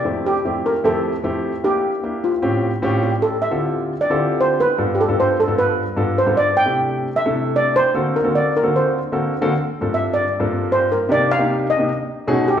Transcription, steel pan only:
X:1
M:4/4
L:1/16
Q:1/4=152
K:F
V:1 name="Steel pan"
z2 G4 B2 A8 | G6 F8 G2 | [K:Dm] A2 e6 d4 c2 =B2- | =B3/2 G/2 A2 c2 A2 B6 c2 |
d2 g6 e4 d2 c2- | c2 B2 d2 B2 c6 z2 | z4 e2 d4 z2 c2 B2 | d2 f4 _e4 z4 G2 |]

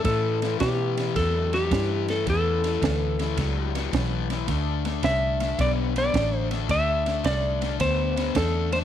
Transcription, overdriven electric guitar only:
X:1
M:4/4
L:1/8
Q:"Swing" 1/4=108
K:D
V:1 name="Overdriven electric guitar" clef=bass
[A,,E,] [A,,E,] [A,,E,] [A,,E,] [A,,F,] [A,,F,] [A,,E,] [A,,E,] | [A,,E,] [A,,E,] [A,,E,] [A,,E,] [A,,F,] [A,,F,] [A,,E,] [A,,E,] | [D,A,] [D,A,] [D,A,] [D,A,] [D,B,] [D,B,] [D,A,] [D,A,] | [D,A,] [D,A,] [D,A,] [D,A,] [D,B,] [D,B,] [D,A,] [D,A,] |]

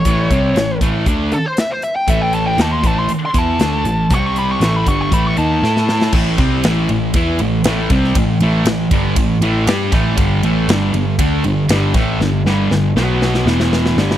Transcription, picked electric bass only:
X:1
M:4/4
L:1/8
Q:1/4=118
K:Glyd
V:1 name="Picked electric bass" clef=bass
A,,, =C,, A,,, A,,, D,, z3 | A,,,2 ^D,, A,,, z E,, =D,, A,,, | =C,,2 A,,, G,,, A,,, ^D,, A,,2 | A,,, =C,, A,,, A,,, E,, A,,, A,,, C,, |
A,,, A,,, A,,, G,,, A,,, A,,, G,, A,,, | G,,, A,,, G,,, G,,, D,, G,,, G,,, A,,, | G,,, G,,, G,,, B,,,2 E,,,2 G,,, |]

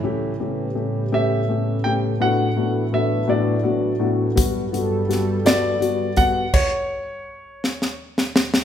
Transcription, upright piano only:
X:1
M:6/8
L:1/8
Q:3/8=55
K:Amix
V:1 name="Upright piano"
[A,CG] [A,CG] [A,CG] [A,CG] [A,CG] [A,CG] | [A,,B,DF] [A,,B,DF] [A,,B,DF] [A,,B,DF] [A,,B,DF] [A,,B,DF] | [G,B,F] [G,B,F] [G,B,F] [G,B,F] [G,B,F] [G,B,F] | z6 |]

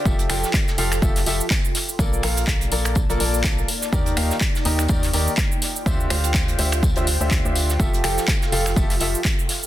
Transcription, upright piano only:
X:1
M:4/4
L:1/16
Q:"Swing 16ths" 1/4=124
K:F
V:1 name="Upright piano"
[F,FGAe]2 [F,FGAg] z3 [F,FGAf] z [F,FGAe] z [F,FGAe] z4 z | [B,FABd]2 [B,FABf]4 [B,FABd]2 z [B,FABd] [B,FABd]4 z2 | [_E,_EGBd]2 [E,EGBf] z3 [E,EGB_e] z [E,EGBd] z [E,EGBd] z4 z | [D,FGce]2 [D,FGcf]4 [D,FGce]2 z [D,FGce] z [D,FGce]2 [D,FGce]2 z |
[F,FGAe]2 [F,FGAg] z3 [F,FGAf] z [F,FGAe] z [F,FGAe] z4 z |]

